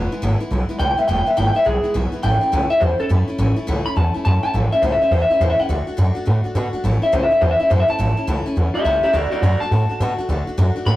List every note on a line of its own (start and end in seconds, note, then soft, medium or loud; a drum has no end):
0.00 0.10 E1 medium
0.00 0.12 E2 medium
0.00 0.12 B2 medium
0.00 0.12 E3 medium
0.00 0.12 G#3 medium
0.00 0.11 B3 medium
0.00 0.11 E4 medium
0.12 0.22 E3 soft
0.12 0.22 G#3 medium
0.12 0.22 B3 medium
0.12 0.22 E4 medium
0.12 muted upright bass stroke medium
0.22 0.39 G#1 medium
0.22 0.41 E2 medium
0.22 0.41 B2 loud
0.22 0.41 E3 medium
0.22 0.41 G#3 loud
0.22 0.40 B3 medium
0.22 0.39 E4 loud
0.40 0.49 E3 soft
0.40 0.50 G#3 medium
0.40 0.51 B3 medium
0.40 0.51 E4 medium
0.40 muted upright bass stroke medium
0.51 0.68 B1 loud
0.51 0.69 E3 medium
0.51 0.69 G#3 medium
0.51 0.68 B3 medium
0.51 0.68 E4 medium
0.69 0.79 E3 medium
0.69 0.79 G#3 medium
0.69 0.79 B3 medium
0.69 0.79 E4 medium
0.79 0.96 C#2 medium
0.79 0.98 E2 medium
0.79 0.98 B2 medium
0.79 0.98 E3 medium
0.79 0.98 G#3 medium
0.79 0.97 B3 medium
0.79 0.96 E4 medium
0.79 0.88 G5 loud
0.90 0.99 G5 medium
0.97 1.07 E3 soft
0.97 1.08 G#3 soft
0.97 1.08 B3 medium
0.97 1.08 E4 medium
0.97 1.07 E5 medium
1.08 1.25 E1 medium
1.08 1.27 E2 medium
1.08 1.27 B2 medium
1.08 1.27 E3 medium
1.08 1.26 G#3 medium
1.08 1.26 B3 medium
1.08 1.25 E4 medium
1.08 1.17 G5 medium
1.18 1.27 G5 medium
1.26 1.36 E3 soft
1.26 1.36 G#3 medium
1.26 1.37 B3 medium
1.26 1.37 E4 medium
1.26 1.37 E5 medium
1.26 muted upright bass stroke medium
1.37 1.54 G#1 medium
1.37 1.55 E2 medium
1.37 1.56 B2 medium
1.37 1.56 E3 medium
1.37 1.55 G#3 medium
1.37 1.54 B3 medium
1.37 1.54 E4 medium
1.37 1.46 G5 medium
1.47 1.56 G5 loud
1.55 1.64 E3 soft
1.55 1.64 G#3 soft
1.55 1.65 B3 medium
1.55 1.65 E4 medium
1.55 1.66 E5 medium
1.55 muted upright bass stroke medium
1.65 1.83 B1 medium
1.65 1.84 E3 medium
1.65 1.83 G#3 medium
1.65 1.83 B3 medium
1.65 1.82 E4 medium
1.65 1.94 G#4 loud
1.83 1.93 E3 soft
1.83 1.94 G#3 soft
1.83 1.94 B3 medium
1.83 1.94 E4 medium
1.83 muted upright bass stroke medium
1.94 2.11 B1 medium
1.94 2.13 E2 medium
1.94 2.13 B2 medium
1.94 2.13 E3 medium
1.94 2.12 G#3 medium
1.94 2.11 B3 medium
1.94 2.11 E4 medium
2.12 2.22 E3 medium
2.12 2.23 G#3 medium
2.12 2.23 B3 medium
2.12 2.23 E4 medium
2.12 muted upright bass stroke medium
2.23 2.40 A1 loud
2.23 2.42 A2 medium
2.23 2.42 E3 medium
2.23 2.42 A3 medium
2.23 2.41 C#4 medium
2.23 2.40 E4 medium
2.23 2.69 G5 loud
2.41 2.52 A3 soft
2.41 2.52 C#4 medium
2.41 2.52 E4 medium
2.41 muted upright bass stroke medium
2.52 2.69 C#2 loud
2.52 2.71 A2 medium
2.52 2.71 E3 medium
2.52 2.71 A3 medium
2.52 2.70 C#4 medium
2.52 2.69 E4 loud
2.70 2.80 A3 medium
2.70 2.81 C#4 medium
2.70 2.81 E4 medium
2.70 2.81 E5 loud
2.80 2.98 E2 loud
2.80 2.99 E3 medium
2.80 3.00 A3 medium
2.80 2.99 C#4 medium
2.80 2.98 E4 medium
2.80 2.99 C5 medium
2.99 3.09 A3 soft
2.99 3.09 C#4 medium
2.99 3.10 E4 soft
2.99 3.10 A4 medium
2.99 muted upright bass stroke medium
3.09 3.27 F#2 medium
3.09 3.28 A2 medium
3.09 3.28 E3 medium
3.09 3.29 A3 medium
3.09 3.28 C#4 medium
3.09 3.26 E4 medium
3.28 3.38 A3 medium
3.28 3.38 C#4 medium
3.28 3.38 E4 medium
3.28 muted upright bass stroke medium
3.38 3.55 A1 loud
3.38 3.57 A2 medium
3.38 3.57 E3 medium
3.38 3.57 A3 medium
3.38 3.56 C#4 loud
3.38 3.55 E4 medium
3.56 3.67 A3 medium
3.56 3.67 C#4 medium
3.56 3.67 E4 medium
3.56 muted upright bass stroke medium
3.67 3.84 C#2 medium
3.67 3.86 A2 medium
3.67 3.86 E3 medium
3.67 3.86 A3 loud
3.67 3.86 C#4 loud
3.67 3.84 E4 loud
3.86 3.96 A3 soft
3.86 3.96 C#4 medium
3.86 3.96 E4 medium
3.86 3.96 B5 loud
3.96 4.13 E2 loud
3.96 4.15 E3 medium
3.96 4.15 A3 medium
3.96 4.14 C#4 medium
3.96 4.13 E4 medium
3.96 4.15 A5 medium
4.14 4.24 A3 soft
4.14 4.24 C#4 soft
4.14 4.25 E4 medium
4.14 muted upright bass stroke medium
4.25 4.42 F#2 medium
4.25 4.43 A2 medium
4.25 4.44 E3 medium
4.25 4.44 A3 medium
4.25 4.43 C#4 medium
4.25 4.42 E4 medium
4.25 4.42 A5 medium
4.43 4.54 A3 soft
4.43 4.54 C#4 soft
4.43 4.54 E4 medium
4.43 4.54 A5 medium
4.43 muted upright bass stroke medium
4.54 4.71 A1 loud
4.54 4.72 A2 medium
4.54 4.73 E3 medium
4.54 4.73 A3 medium
4.54 4.72 C#4 medium
4.54 4.71 E4 medium
4.72 4.82 A3 soft
4.72 4.82 C#4 medium
4.72 4.83 E4 medium
4.72 4.82 E5 medium
4.72 muted upright bass stroke medium
4.82 4.99 C#2 medium
4.82 5.01 A2 medium
4.82 5.01 E3 medium
4.82 5.01 A3 medium
4.82 5.01 C#4 medium
4.82 5.00 E4 medium
4.82 4.92 C5 medium
4.92 5.01 E5 medium
5.01 5.11 A3 soft
5.01 5.12 C#4 medium
5.01 5.12 E4 medium
5.01 5.11 E5 medium
5.01 muted upright bass stroke medium
5.11 5.28 E2 medium
5.11 5.30 E3 medium
5.11 5.30 A3 medium
5.11 5.30 C#4 medium
5.11 5.29 E4 medium
5.11 5.21 C5 medium
5.22 5.31 E5 medium
5.30 5.40 A3 soft
5.30 5.40 C#4 soft
5.30 5.40 E4 medium
5.30 5.41 E5 medium
5.30 muted upright bass stroke medium
5.40 5.57 E2 medium
5.40 5.59 A2 medium
5.40 5.59 E3 medium
5.40 5.59 A3 medium
5.40 5.59 C#4 medium
5.40 5.58 E4 medium
5.40 5.50 C5 medium
5.50 5.60 E5 medium
5.59 5.68 A3 soft
5.59 5.70 C#4 medium
5.59 5.69 E4 medium
5.59 6.16 F#5 loud
5.59 muted upright bass stroke medium
5.69 5.86 D2 medium
5.69 5.88 D3 medium
5.69 5.88 A3 medium
5.69 5.87 D4 medium
5.69 5.86 F#4 medium
5.87 5.96 A3 medium
5.87 5.97 D4 medium
5.87 5.97 F#4 medium
5.87 muted upright bass stroke medium
5.97 6.15 F#2 medium
5.97 6.16 D3 medium
5.97 6.16 A3 medium
5.97 6.15 D4 loud
5.97 6.14 F#4 loud
6.15 6.25 A3 medium
6.15 6.26 D4 medium
6.15 6.26 F#4 medium
6.15 muted upright bass stroke medium
6.25 6.43 A2 loud
6.25 6.45 D3 medium
6.25 6.45 A3 medium
6.25 6.44 D4 medium
6.25 6.43 F#4 medium
6.44 6.54 A3 soft
6.44 6.55 D4 medium
6.44 6.55 F#4 medium
6.44 muted upright bass stroke medium
6.55 6.72 B2 medium
6.55 6.74 D3 medium
6.55 6.74 A3 medium
6.55 6.73 D4 medium
6.55 6.72 F#4 loud
6.73 6.84 A3 medium
6.73 6.84 D4 medium
6.73 6.84 F#4 medium
6.73 muted upright bass stroke medium
6.84 7.00 A1 medium
6.84 7.03 A2 medium
6.84 7.03 E3 medium
6.84 7.03 A3 medium
6.84 7.02 C#4 medium
6.84 7.01 E4 loud
7.02 7.12 A3 soft
7.02 7.12 C#4 medium
7.02 7.12 E4 medium
7.02 7.13 E5 medium
7.02 muted upright bass stroke medium
7.12 7.29 C#2 loud
7.12 7.31 A2 medium
7.12 7.31 E3 loud
7.12 7.32 A3 medium
7.12 7.31 C#4 medium
7.12 7.29 E4 medium
7.12 7.22 C5 medium
7.23 7.31 E5 medium
7.31 7.41 A3 soft
7.31 7.41 C#4 medium
7.31 7.42 E4 medium
7.31 7.42 E5 medium
7.31 muted upright bass stroke medium
7.41 7.58 E2 loud
7.41 7.60 E3 medium
7.41 7.60 A3 medium
7.41 7.59 C#4 medium
7.41 7.58 E4 medium
7.41 7.51 C5 loud
7.51 7.60 E5 loud
7.59 7.70 A3 soft
7.59 7.70 C#4 soft
7.59 7.70 E4 medium
7.59 7.70 E5 medium
7.59 muted upright bass stroke medium
7.70 7.87 F#2 medium
7.70 7.89 A2 medium
7.70 7.89 E3 medium
7.70 7.89 A3 medium
7.70 7.88 C#4 medium
7.70 7.87 E4 medium
7.70 7.80 C5 medium
7.80 7.89 E5 medium
7.88 7.98 A3 soft
7.88 7.98 C#4 medium
7.88 7.99 E4 medium
7.88 8.46 A5 loud
7.88 muted upright bass stroke medium
7.99 8.16 A1 medium
7.99 8.17 A2 medium
7.99 8.18 E3 medium
7.99 8.18 A3 medium
7.99 8.17 C#4 medium
7.99 8.16 E4 loud
8.17 8.27 A3 soft
8.17 8.27 C#4 medium
8.17 8.28 E4 medium
8.27 8.44 C#2 medium
8.27 8.46 A2 medium
8.27 8.46 E3 medium
8.27 8.47 A3 loud
8.27 8.46 C#4 medium
8.27 8.45 E4 loud
8.46 8.56 A3 medium
8.46 8.56 C#4 medium
8.46 8.57 E4 medium
8.46 muted upright bass stroke medium
8.56 8.73 E2 medium
8.56 8.75 E3 medium
8.56 8.75 A3 medium
8.56 8.74 C#4 medium
8.56 8.73 E4 medium
8.74 8.84 A3 soft
8.74 8.85 C#4 soft
8.74 8.85 E4 soft
8.74 8.83 G4 medium
8.74 8.84 E5 medium
8.85 9.02 C#2 medium
8.85 9.04 A2 medium
8.85 9.04 E3 medium
8.85 9.04 A3 medium
8.85 9.03 C#4 medium
8.85 9.02 E4 medium
8.85 9.02 G4 medium
8.85 9.03 E5 medium
9.03 9.13 A3 soft
9.03 9.14 C#4 medium
9.03 9.14 E4 medium
9.03 9.13 G4 medium
9.03 9.14 E5 medium
9.03 muted upright bass stroke medium
9.13 9.30 D2 medium
9.13 9.32 D3 medium
9.13 9.33 A3 medium
9.13 9.32 D4 medium
9.13 9.30 F#4 medium
9.13 9.31 F#4 loud
9.13 9.31 D5 loud
9.31 9.42 A3 soft
9.31 9.42 D4 soft
9.31 9.40 F#4 medium
9.31 9.43 F#4 medium
9.31 9.41 D5 medium
9.31 muted upright bass stroke medium
9.42 9.59 F#2 medium
9.42 9.61 D3 medium
9.42 9.62 A3 medium
9.42 9.61 D4 medium
9.42 9.59 F#4 medium
9.42 9.60 F#4 loud
9.42 9.60 D5 medium
9.60 9.71 A3 medium
9.60 9.72 D4 medium
9.60 9.72 F#4 medium
9.60 10.44 A5 loud
9.60 muted upright bass stroke medium
9.71 9.88 A2 medium
9.71 9.90 D3 medium
9.71 9.90 A3 medium
9.71 9.89 D4 medium
9.71 9.88 F#4 medium
9.89 10.00 A3 soft
9.89 10.00 D4 soft
9.89 10.00 F#4 soft
9.89 muted upright bass stroke medium
10.00 10.17 B2 medium
10.00 10.19 D3 medium
10.00 10.19 A3 medium
10.00 10.18 D4 medium
10.00 10.17 F#4 loud
10.18 10.28 A3 medium
10.18 10.29 D4 medium
10.18 10.29 F#4 medium
10.18 muted upright bass stroke medium
10.29 10.45 D2 medium
10.29 10.47 D3 medium
10.29 10.48 A3 medium
10.29 10.47 D4 medium
10.29 10.46 F#4 medium
10.47 10.57 A3 medium
10.47 10.57 D4 medium
10.47 10.57 F#4 medium
10.47 muted upright bass stroke medium
10.58 10.74 F#2 loud
10.58 10.76 D3 medium
10.58 10.76 A3 loud
10.58 10.75 D4 loud
10.58 10.74 F#4 loud
10.76 10.85 A3 medium
10.76 10.86 D4 medium
10.76 10.86 F#4 medium
10.76 muted upright bass stroke medium
10.86 10.96 A2 loud
10.86 10.96 D3 medium
10.86 10.96 A3 medium
10.86 10.96 D4 medium
10.86 10.96 F#4 medium
10.86 10.96 B5 loud